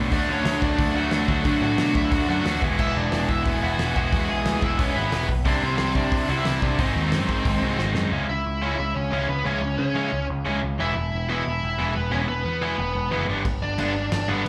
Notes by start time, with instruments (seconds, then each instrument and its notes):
Already playing: picked electric bass B2, distorted electric guitar D3 F#3 A3 D4, overdriven electric guitar D3 F#3 A3 D4
0.11 picked electric bass D2, distorted electric guitar D3 F#3 A3 D4, overdriven electric guitar D3 F#3 A3 D4, lead electric guitar D4 D5, kick, open hi-hat
0.28 picked electric bass D2, lead electric guitar C#4 C#5
0.45 picked electric bass D2, snare, open hi-hat
0.61 picked electric bass D2, overdriven electric guitar D3 A3 D4, lead electric guitar D4 D5, kick
0.78 picked electric bass D2, kick, open hi-hat
0.95 picked electric bass D2, distorted electric guitar D3 F#3 A3 D4, lead electric guitar F#4 F#5
1.11 picked electric bass D2, distorted electric guitar D3 F#3 A3 D4, snare, open hi-hat
1.28 picked electric bass D2, overdriven electric guitar D3 F#3 A3 D4, lead electric guitar F#4 F#5, kick
1.45 overdriven electric guitar D3 F#3 A3 D4, distorted electric guitar D3 F#3 A3 D4, picked electric bass D3, kick, open hi-hat
1.61 picked electric bass A2, lead electric guitar F#4 F#5
1.77 picked electric bass B2, snare, open hi-hat
1.94 picked electric bass D2, overdriven electric guitar D3 A3 D4, lead electric guitar E4 E5, kick
2.11 picked electric bass D2, lead electric guitar F#4 F#5, kick, open hi-hat
2.28 picked electric bass F#2, distorted electric guitar D3 F#3 A3 D4, lead electric guitar F#4 F#5
2.44 picked electric bass D2, distorted electric guitar D3 F#3 A3 D4, snare, open hi-hat
2.61 picked electric bass E1, overdriven electric guitar E2 B2 E3 G#3 B3 E4, distorted electric guitar E3 G#3 B3 E4, kick
2.79 picked electric bass E1, lead electric guitar E4 E5, kick, crash
2.95 picked electric bass E1, lead electric guitar D4 D5
3.11 picked electric bass E1, overdriven electric guitar E2 B2 E3, snare, open hi-hat
3.29 picked electric bass E1, lead electric guitar E4 E5, kick
3.45 picked electric bass E1, distorted electric guitar E3 G#3 B3 E4, kick, open hi-hat
3.61 picked electric bass E1, distorted electric guitar E3 G#3 B3 E4, lead electric guitar F#4 F#5
3.78 picked electric bass E1, overdriven electric guitar E3 G#3 B3 E4, snare, open hi-hat
3.95 picked electric bass E1, overdriven electric guitar E2 B2 E3 G#3 B3 E4, distorted electric guitar E3 G#3 B3 E4, lead electric guitar F#4 F#5, kick
4.13 picked electric bass E2, kick, open hi-hat
4.29 picked electric bass B1, lead electric guitar G#4 G#5
4.45 picked electric bass D2, overdriven electric guitar E2 B2 E3, snare, open hi-hat
4.62 picked electric bass E1, lead electric guitar E4 E5, kick
4.78 picked electric bass E1, distorted electric guitar E3 G#3 B3 E4, lead electric guitar C#4 C#5, kick, open hi-hat
4.94 picked electric bass G#1, distorted electric guitar E3 G#3 B3 E4, lead electric guitar B3 B4
5.11 picked electric bass E1, overdriven electric guitar E3 G#3 B3 E4, snare, open hi-hat
5.29 picked electric bass B1, kick
5.45 picked electric bass C2, overdriven electric guitar C3 G3 C4 E4, distorted electric guitar C3 G3 C4 E4, lead electric guitar D4 D5, kick, open hi-hat
5.62 picked electric bass C2, lead electric guitar C4 C5
5.78 picked electric bass C2, snare, open hi-hat
5.95 picked electric bass C2, overdriven electric guitar C3 G3 C4, lead electric guitar D4 D5, kick
6.12 picked electric bass C2, kick, open hi-hat
6.28 picked electric bass C2, distorted electric guitar C3 G3 C4 E4, lead electric guitar F#4 F#5
6.37 lead electric guitar E4 E5
6.44 picked electric bass C2, distorted electric guitar C3 G3 C4 E4, snare, open hi-hat
6.61 picked electric bass C2, overdriven electric guitar C3 G3 C4 E4, lead electric guitar D4 D5, kick
6.78 picked electric bass G#1, overdriven electric guitar G#2 D#3 F#3 C4 D#4, distorted electric guitar G#2 D#3 G#3 C4 D#4, lead electric guitar C4 C5, kick, open hi-hat
6.96 picked electric bass D#2
7.12 picked electric bass F#2, snare, open hi-hat
7.28 picked electric bass G#1, overdriven electric guitar G#2 D#3 G#3, kick
7.45 picked electric bass G#1, kick, open hi-hat
7.63 picked electric bass C2, distorted electric guitar G#2 D#3 G#3 C4 D#4
7.79 picked electric bass G#1, distorted electric guitar G#2 D#3 G#3 C4 D#4, snare
7.95 picked electric bass F#2, overdriven electric guitar G#2 D#3 F#3 C4 D#4, snare
8.12 picked electric bass C#2, distorted electric guitar C#3 G#3 C#4 E4
8.29 picked electric bass C#2, lead electric guitar E4 E5
8.46 picked electric bass C#2
8.62 distorted electric guitar C#3 G#3 C#4 E4
8.78 picked electric bass C#2, lead electric guitar E4 E5
8.95 picked electric bass C#2, lead electric guitar C#4 C#5
9.12 picked electric bass C#2, distorted electric guitar C#3 G#3 C#4 E4
9.29 picked electric bass C#2, lead electric guitar B3 B4
9.46 picked electric bass C#2, distorted electric guitar C#3 G#3 C#4 E4, lead electric guitar C#4 C#5
9.62 picked electric bass C#2
9.78 picked electric bass C#3, lead electric guitar C#4 C#5
9.95 distorted electric guitar C#3 G#3 C#4 E4
10.13 picked electric bass C#2
10.30 picked electric bass C#2
10.45 picked electric bass C#2, distorted electric guitar C#3 G#3 C#4 E4
10.63 picked electric bass C#2
10.78 picked electric bass E1, overdriven electric guitar E2 B2, distorted electric guitar E3 G#3 B3 E4, lead electric guitar E4 E5
10.96 picked electric bass E1
11.13 picked electric bass E1
11.29 overdriven electric guitar E2 B2, distorted electric guitar E3 G#3 B3 E4, lead electric guitar E4 E5
11.46 picked electric bass E1
11.63 picked electric bass E1
11.78 picked electric bass E1, overdriven electric guitar E2 B2, distorted electric guitar E3 G#3 B3 E4
11.96 picked electric bass E1, lead electric guitar B3 B4
12.11 picked electric bass E1, overdriven electric guitar E2 B2, distorted electric guitar E3 G#3 B3 E4, lead electric guitar C#4 C#5
12.28 picked electric bass E1, lead electric guitar B3 B4
12.45 picked electric bass E2
12.61 overdriven electric guitar E2 B2, distorted electric guitar E3 G#3 B3 E4
12.79 picked electric bass E1
12.95 picked electric bass E1
13.11 picked electric bass F#1, overdriven electric guitar E2 B2, distorted electric guitar E3 G#3 B3 E4
13.29 picked electric bass G1, distorted electric guitar G2 D3 G3 B3 D4
13.45 picked electric bass G1, kick, crash
13.63 picked electric bass G1, lead electric guitar D4 D5
13.78 picked electric bass G1, distorted electric guitar G2 D3 G3 B3 D4, crash
14.12 picked electric bass G1, lead electric guitar D4 D5, snare, crash
14.28 picked electric bass G1, distorted electric guitar G2 D3 G3 B3 D4, lead electric guitar B3 B4